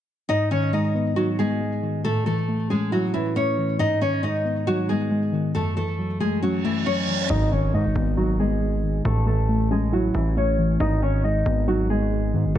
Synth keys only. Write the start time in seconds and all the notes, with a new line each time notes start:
0.29 G#2
0.52 D#3
0.73 G#3
0.95 B3
1.17 D#4
1.39 B3
1.61 G#3
1.82 D#3
2.05 A2
2.26 E3
2.48 A3
2.70 C#4
2.92 E4
3.14 C#4
3.36 A3
3.58 E3
3.79 G#2
4.02 D#3
4.24 G#3
4.45 B3
4.67 D#4
4.89 B3
5.11 G#3
5.32 D#3
5.55 F#2
5.77 E3
5.98 F#3
6.20 A3
6.43 C#4
6.64 A3
6.87 F#3
7.08 E3
7.30 G#2
7.52 D#3
7.74 G#3
7.96 B3
8.17 D#4
8.40 B3
8.61 G#3
8.83 D#3
9.05 A2
9.27 E3
9.49 A3
9.70 C#4
9.92 E4
10.15 C#4
10.36 A3
10.58 E3
10.80 G#2
11.02 D#3
11.25 G#3
11.46 B3
11.68 D#4
11.89 B3
12.12 G#3
12.33 D#3